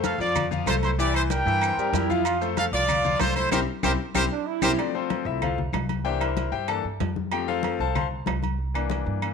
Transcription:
Already playing: F2 A3 A4 C5
0.04 A4 F5, high conga, low timbale, low agogo, maracas
0.18 F2 F3 F4 D5 F5, high conga, maracas
0.35 high conga, low conga, low agogo, claves, maracas
0.51 F3 F4 F5, high conga, low conga, maracas
0.66 C2 A3 F4 A4 C5, high conga, low timbale, low agogo, claves, maracas
0.83 E4 C5, high conga, low agogo, maracas
0.98 E3 E4 G4 D5 E5, high conga, maracas
1.14 E4 C5, high conga, low agogo, claves, maracas
1.30 G3 G4 A#4 G5, high conga, low timbale, low agogo, maracas
1.45 G2 E3 E4 E5, high conga, maracas
1.61 C4, high conga, low agogo, claves, maracas
1.77 G2 G3 G4 A#4, high conga, maracas
1.93 F2 G3 E4 G4 A#4, high conga, low timbale, low agogo, maracas
2.10 F3 F4 F5, high conga, maracas
2.25 F4, low agogo, claves, maracas
2.41 A3 A4 C5, high conga, maracas
2.57 A4 F5, high conga, low timbale, low agogo, maracas
2.72 C2 F3 F4 D5 F5, high conga, maracas
2.89 high conga, low conga, low agogo, claves, maracas
3.05 F3 F4 F5, high conga, low conga, maracas
3.20 C2 A3 F4 A4 C5, high conga, low timbale, low agogo, claves, maracas
3.36 E4 C5, high conga, low agogo, maracas
3.51 C2 C4 E4 G4 A#4 C5, high conga, high timbale, claves, maracas
3.83 C2 C4 E4 G4 A#4 C5, high conga, high timbale, claves, maracas
4.14 C2 C4 E4 G4 A#4 C5, high conga, high timbale, claves, maracas
4.31 D4
4.46 E4
4.62 C2 C4 E4 G4 A#4 C5, high conga, high timbale, claves, maracas
4.78 F3 A3 C4 D4 D5, high conga, low agogo, claves
4.94 C4 F4 A4 C5, high conga
5.10 high conga, low timbale, low agogo
5.25 C2 F3 A3 C4 E4 E5, high conga
5.42 F4 A4 C5 F5, high conga, low conga, low agogo, claves
5.58 high conga, low conga
5.73 C2, high conga, low timbale, low agogo, claves
5.89 high conga, low agogo
6.04 E3 A#3 D4 G4 C5 E5 G5, high conga
6.21 E4 A#4 C5 E5, high conga, low agogo, claves
6.37 high conga, low timbale, low agogo
6.52 G2 G4 C5 E5 G5, high conga
6.68 E3 A#3 D4 A4 A5, high conga, low agogo, claves
6.84 G2, high conga
7.00 F2, high conga, low timbale, low agogo
7.16 high conga
7.32 F3 A3 C4 G4 G5, high conga, low agogo, claves
7.48 F4 A4 C5 F5, high conga
7.63 high conga, low timbale, low agogo
7.79 C2 A4 C5 F5 A5, high conga
7.95 C5 F5 A5 C6, high conga, low conga, low agogo, claves
8.11 high conga
8.26 C2, high conga, low timbale, low agogo, claves
8.43 high conga, low agogo
8.58 high conga
8.74 E3 A#3 D4, high conga, low agogo, claves
8.90 high conga, low timbale, low agogo
9.06 G2, high conga
9.22 E3 A#3 D4, high conga, low agogo, claves

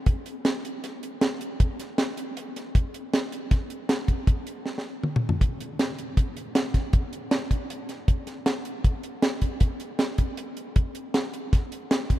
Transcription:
0.06 kick, closed hi-hat
0.26 closed hi-hat
0.45 snare, closed hi-hat
0.65 closed hi-hat
0.84 snare, closed hi-hat
1.03 closed hi-hat
1.21 snare, closed hi-hat
1.41 closed hi-hat
1.60 kick, closed hi-hat
1.80 snare, closed hi-hat
1.98 snare, closed hi-hat
2.17 closed hi-hat
2.37 closed hi-hat
2.56 snare, closed hi-hat
2.75 kick, closed hi-hat
2.94 closed hi-hat
3.14 snare, closed hi-hat
3.32 closed hi-hat
3.51 kick, snare, closed hi-hat
3.70 closed hi-hat
3.89 snare, closed hi-hat
4.08 kick, closed hi-hat
4.27 kick, closed hi-hat
4.47 closed hi-hat
4.66 snare
4.78 snare
5.03 mid tom
5.16 mid tom
5.29 floor tom
5.41 kick, closed hi-hat
5.61 closed hi-hat
5.79 snare, closed hi-hat
5.98 closed hi-hat
6.17 kick, closed hi-hat
6.37 closed hi-hat
6.55 snare, closed hi-hat
6.74 kick, snare, closed hi-hat
6.93 kick, closed hi-hat
7.13 closed hi-hat
7.31 snare, closed hi-hat
7.51 kick, closed hi-hat
7.70 closed hi-hat
7.89 snare, closed hi-hat
8.08 kick, closed hi-hat
8.27 snare, closed hi-hat
8.46 snare, closed hi-hat
8.65 closed hi-hat
8.84 kick, closed hi-hat
9.03 closed hi-hat
9.22 snare, closed hi-hat
9.42 kick, closed hi-hat
9.60 kick, closed hi-hat
9.80 closed hi-hat
9.99 snare, closed hi-hat
10.18 kick, closed hi-hat
10.37 closed hi-hat
10.57 closed hi-hat
10.76 kick, closed hi-hat
10.95 closed hi-hat
11.14 snare, closed hi-hat
11.34 closed hi-hat
11.53 kick, snare, closed hi-hat
11.72 closed hi-hat
11.91 snare, closed hi-hat
12.10 kick, closed hi-hat

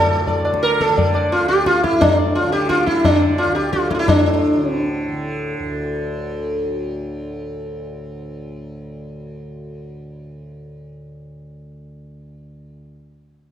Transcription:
Already playing: D2 A2 D3 A4
0.27 D5, tabla tin, tabla ge
0.38 D3
0.45 D5, tabla na
0.54 tabla ke
0.63 A#4, tabla te
0.72 tabla te
0.81 A4, tabla ke
0.89 D3, tabla te
0.97 D5, tabla tin, tabla ge
1.14 D5, tabla na
1.32 F4, tabla na
1.40 D2
1.48 G4, tabla te
1.66 F4, tabla ke
1.83 E4, tabla ke
1.91 A2
2.01 D4, tabla na, tabla ge
2.19 D5
2.35 F4, tabla na
2.43 D3
2.52 G4, tabla te
2.69 F4, tabla ke
2.86 E4, tabla ke
2.93 D3
3.05 D4, tabla na, tabla ge
3.22 D5
3.38 F4, tabla na
3.45 D2
3.55 G4, tabla te
3.73 F4, tabla ke
3.90 E4, tabla ke
3.95 A2 F4
3.99 E4
4.06 A2 D4, tabla na, tabla ge
4.57 D3 C#4
4.72 C4
5.08 D3
5.59 D2

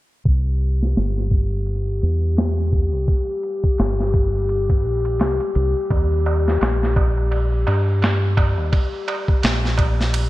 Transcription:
0.25 C2 G4, kick, ride
0.61 ride
0.83 snare
0.96 G1, snare, ride
1.18 snare
1.31 kick, ride
1.66 ride
2.02 E2, ride
2.37 snare, ride
2.72 kick, ride
2.94 C2
3.08 kick, ride
3.43 ride
3.64 kick
3.78 G1, snare, ride
4.00 snare
4.14 kick, ride
4.49 ride
4.70 kick, ride
4.85 A#1
5.05 ride
5.19 C2, snare, ride
5.40 ride
5.55 C2, ride
5.90 D#2, kick, ride, darbuka tek
6.12 darbuka tek
6.26 ride, darbuka tek
6.47 snare, darbuka tek
6.61 A#1, snare, ride, darbuka tek
6.81 snare, darbuka tek
6.96 kick, ride, darbuka tek
7.17 darbuka tek
7.31 ride, darbuka tek
7.52 darbuka tek
7.67 G2, ride, darbuka tek
7.87 darbuka tek
8.02 snare, ride, darbuka tek
8.22 darbuka tek
8.37 kick, ride, darbuka tek
8.58 D#2, darbuka tek
8.72 kick, ride, darbuka tek
8.93 darbuka tek
9.08 ride, darbuka tek
9.28 kick, darbuka tek
9.43 A#1, snare, ride, darbuka tek
9.64 snare, darbuka tek
9.78 kick, ride, darbuka tek
9.99 snare, darbuka tek
10.13 ride, darbuka tek

